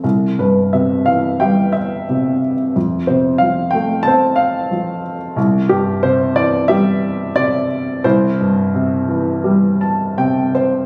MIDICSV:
0, 0, Header, 1, 2, 480
1, 0, Start_track
1, 0, Key_signature, 0, "major"
1, 0, Tempo, 680272
1, 27, Time_signature, 4, 2, 24, 8
1, 1946, Tempo, 656455
1, 5306, Tempo, 696864
1, 6746, Tempo, 733496
1, 7672, End_track
2, 0, Start_track
2, 0, Title_t, "Grand piano"
2, 0, Program_c, 0, 0
2, 0, Control_c, 0, 64, 127
2, 25, Note_on_c, 0, 36, 41
2, 37, Control_c, 0, 64, 0
2, 172, Control_c, 0, 64, 127
2, 273, Note_on_c, 0, 43, 38
2, 277, Note_on_c, 0, 71, 50
2, 500, Note_off_c, 0, 71, 0
2, 515, Note_on_c, 0, 76, 57
2, 516, Note_on_c, 0, 48, 41
2, 745, Note_on_c, 0, 77, 66
2, 759, Note_on_c, 0, 52, 39
2, 762, Note_off_c, 0, 76, 0
2, 986, Note_on_c, 0, 79, 72
2, 995, Note_on_c, 0, 55, 43
2, 995, Note_on_c, 0, 76, 53
2, 997, Note_off_c, 0, 77, 0
2, 1205, Note_off_c, 0, 43, 0
2, 1206, Note_off_c, 0, 76, 0
2, 1217, Note_on_c, 0, 76, 65
2, 1237, Note_off_c, 0, 79, 0
2, 1445, Note_off_c, 0, 48, 0
2, 1476, Note_on_c, 0, 48, 41
2, 1684, Note_off_c, 0, 52, 0
2, 1792, Note_off_c, 0, 76, 0
2, 1916, Note_off_c, 0, 36, 0
2, 1917, Note_off_c, 0, 55, 0
2, 1933, Note_off_c, 0, 48, 0
2, 1947, Note_on_c, 0, 41, 47
2, 1954, Control_c, 0, 64, 0
2, 2103, Control_c, 0, 64, 127
2, 2176, Note_on_c, 0, 72, 55
2, 2188, Note_on_c, 0, 48, 42
2, 2402, Note_off_c, 0, 72, 0
2, 2403, Note_on_c, 0, 77, 73
2, 2427, Note_on_c, 0, 53, 45
2, 2639, Note_on_c, 0, 79, 72
2, 2658, Note_off_c, 0, 77, 0
2, 2670, Note_on_c, 0, 57, 46
2, 2875, Note_on_c, 0, 81, 86
2, 2895, Note_off_c, 0, 79, 0
2, 2905, Note_on_c, 0, 60, 53
2, 2911, Note_on_c, 0, 72, 64
2, 3107, Note_off_c, 0, 81, 0
2, 3109, Note_off_c, 0, 48, 0
2, 3115, Note_on_c, 0, 77, 76
2, 3347, Note_off_c, 0, 53, 0
2, 3373, Note_on_c, 0, 53, 46
2, 3589, Note_off_c, 0, 57, 0
2, 3694, Note_off_c, 0, 77, 0
2, 3827, Note_off_c, 0, 41, 0
2, 3830, Note_off_c, 0, 60, 0
2, 3832, Note_off_c, 0, 72, 0
2, 3840, Note_off_c, 0, 53, 0
2, 3851, Note_on_c, 0, 36, 57
2, 3863, Control_c, 0, 64, 0
2, 3995, Control_c, 0, 64, 127
2, 4093, Note_on_c, 0, 67, 76
2, 4101, Note_on_c, 0, 43, 46
2, 4338, Note_on_c, 0, 48, 53
2, 4338, Note_on_c, 0, 72, 80
2, 4344, Note_off_c, 0, 67, 0
2, 4562, Note_off_c, 0, 72, 0
2, 4578, Note_on_c, 0, 52, 50
2, 4579, Note_on_c, 0, 74, 83
2, 4802, Note_off_c, 0, 74, 0
2, 4814, Note_on_c, 0, 76, 89
2, 4823, Note_on_c, 0, 55, 54
2, 4824, Note_on_c, 0, 67, 65
2, 5032, Note_off_c, 0, 43, 0
2, 5273, Note_off_c, 0, 76, 0
2, 5275, Note_off_c, 0, 48, 0
2, 5307, Note_on_c, 0, 48, 50
2, 5308, Note_on_c, 0, 74, 88
2, 5512, Note_off_c, 0, 52, 0
2, 5753, Note_off_c, 0, 36, 0
2, 5757, Note_off_c, 0, 55, 0
2, 5757, Note_off_c, 0, 67, 0
2, 5769, Note_off_c, 0, 48, 0
2, 5782, Note_on_c, 0, 72, 83
2, 5784, Note_on_c, 0, 36, 60
2, 5787, Note_on_c, 0, 64, 58
2, 5791, Control_c, 0, 64, 0
2, 5798, Note_off_c, 0, 74, 0
2, 5923, Control_c, 0, 64, 127
2, 6031, Note_on_c, 0, 43, 49
2, 6265, Note_on_c, 0, 48, 51
2, 6500, Note_on_c, 0, 52, 50
2, 6744, Note_on_c, 0, 55, 54
2, 6961, Note_off_c, 0, 43, 0
2, 6986, Note_on_c, 0, 81, 58
2, 7203, Note_off_c, 0, 48, 0
2, 7211, Note_off_c, 0, 81, 0
2, 7226, Note_on_c, 0, 48, 48
2, 7227, Note_on_c, 0, 79, 64
2, 7442, Note_off_c, 0, 72, 0
2, 7443, Note_off_c, 0, 52, 0
2, 7444, Note_off_c, 0, 64, 0
2, 7452, Note_off_c, 0, 79, 0
2, 7468, Note_on_c, 0, 72, 63
2, 7672, Note_off_c, 0, 36, 0
2, 7672, Note_off_c, 0, 48, 0
2, 7672, Note_off_c, 0, 55, 0
2, 7672, Note_off_c, 0, 72, 0
2, 7672, End_track
0, 0, End_of_file